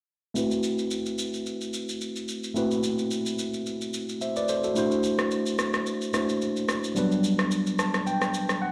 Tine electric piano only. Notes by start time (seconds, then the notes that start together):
0.34 A3 C4 E4 F#4 B4
2.54 A3 C4 E4 F#4 B4
4.21 C5 E5
4.36 B4 D5
4.49 A4 C5
4.64 F#4 A4
4.75 A3 D4 E4 F#4 C5
6.13 A3 D4 E4 F#4 C5
6.95 F#3 G3 B3 D4 B4
7.79 A5
8.07 G5
8.62 F#5